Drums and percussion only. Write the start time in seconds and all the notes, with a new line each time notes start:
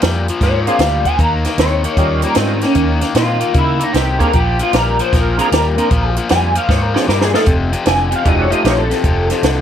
0.02 snare, closed hi-hat
0.28 closed hi-hat
0.41 kick, snare, closed hi-hat
0.67 closed hi-hat
0.79 snare, closed hi-hat
1.05 kick, closed hi-hat
1.19 kick, closed hi-hat
1.45 snare, closed hi-hat
1.58 snare, closed hi-hat
1.84 closed hi-hat
1.97 kick, closed hi-hat
2.22 closed hi-hat
2.35 snare, closed hi-hat
2.61 snare, closed hi-hat
2.75 kick, closed hi-hat
3.01 snare, closed hi-hat
3.15 snare, closed hi-hat
3.41 closed hi-hat
3.54 kick, closed hi-hat
3.80 closed hi-hat
3.94 snare, closed hi-hat
4.20 kick, closed hi-hat
4.33 kick, closed hi-hat
4.59 closed hi-hat
4.73 snare, closed hi-hat
4.99 closed hi-hat
5.13 kick, snare, closed hi-hat
5.39 closed hi-hat
5.52 snare, closed hi-hat
5.78 closed hi-hat
5.91 kick, closed hi-hat
6.17 closed hi-hat
6.29 snare, closed hi-hat
6.55 closed hi-hat
6.69 kick, snare
6.96 snare
7.09 snare
7.21 snare
7.34 snare
7.46 kick, closed hi-hat
7.73 closed hi-hat
7.86 snare, closed hi-hat
8.12 closed hi-hat
8.25 kick, closed hi-hat
8.52 closed hi-hat
8.65 snare, closed hi-hat
8.91 snare, closed hi-hat
9.04 kick, closed hi-hat
9.30 snare, closed hi-hat
9.43 snare, closed hi-hat